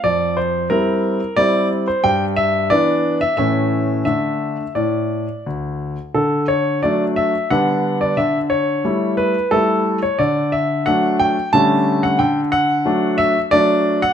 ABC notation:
X:1
M:3/4
L:1/16
Q:1/4=90
K:Cmix
V:1 name="Grand piano"
d2 c2 B4 d3 c | [K:D] g2 e2 d3 e e4 | e4 d4 z4 | A2 c2 d2 e2 f3 d |
e2 c4 B2 A3 c | d2 e2 f2 g2 a3 f | g2 f4 e2 d3 f |]
V:2 name="Grand piano"
F,,4 [G,CE]4 [G,CE]4 | [K:D] G,,4 [E,B,D]4 [A,,E,A,C]4 | [D,A,D]4 A,,4 D,,4 | D,4 [F,A,D]4 [D,G,B,D]4 |
D,4 [G,A,E]4 [G,A,E]4 | D,4 [F,A,D]4 [D,G,A,C]4 | D,4 [F,A,D]4 [F,A,D]4 |]